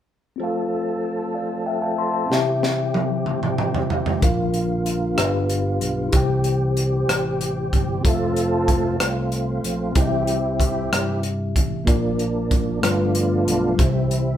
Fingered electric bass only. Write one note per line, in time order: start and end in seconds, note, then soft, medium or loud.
4.22 5.14 A#1 medium
5.17 5.78 G1 medium
5.80 6.10 B1 medium
6.13 7.05 C2 medium
7.09 7.69 A1 medium
7.73 8.02 G1 medium
8.05 8.97 F1 medium
9.00 9.60 C2 medium
9.64 9.94 A#1 medium
9.95 10.88 C2 medium
10.92 11.52 G2 medium
11.56 11.85 A1 medium
11.87 12.79 A#1 medium
12.83 13.43 G1 medium
13.46 13.76 B1 medium
13.79 14.37 C2 medium